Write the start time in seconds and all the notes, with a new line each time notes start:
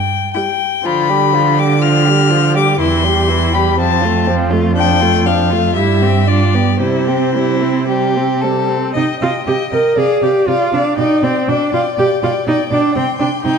Already playing: G2 G5
0.34 G3 E4 G5
0.84 D3 F3 F4 B5
1.09 G3 G4
1.33 F3 F4
1.58 G3 G4 D6
1.82 F3 F4 F6
2.05 G3 G4
2.29 F3 F4
2.54 G3 G4 D6
2.80 E2 E3 E4 C6
3.04 G3 G4
3.28 E3 E4
3.53 G3 G4 B5
3.78 F2 F3 C4 A5
4.02 A3 F4
4.27 F3 C4
4.50 A3 F4
4.76 F3 D4 G5
5.01 A3 F4
5.26 F3 D4 F5
5.50 A3 F4
5.75 G2 G3 E4 E5
6.02 C4 G4
6.28 D4 F4 D5
6.54 B3 G4
6.80 C3 G3 E4 C5
7.08 C4 G4
7.34 G3 E4
7.61 C4
7.88 G3 G4
8.17 C4
8.41 G3 A4
8.69 C4
8.94 C3 D#4 D#5 G5
9.20 C3 F4 D#5 G5
9.47 C3 G4 D#5 G5
9.71 C3 A#4 D#5 G5
9.97 C3 G#4 D5 F5
10.22 C3 G4 D5 F5
10.47 C3 F4 D5 F5
10.73 C3 D4 D5 F5
10.97 B2 D#4 D5 G5
11.22 B2 C4 D5 G5
11.48 B2 D4 D5 G5
11.72 B2 F4 D5 G5
11.95 B2 G4 D5 G5
12.22 B2 F4 D5 G5
12.47 B2 D#4 D5 G5
12.69 B2 D4 D5 G5
12.94 C3 C4 G5 C6
13.18 C3 D4 G5 C6
13.42 C3 D#4 G5 C6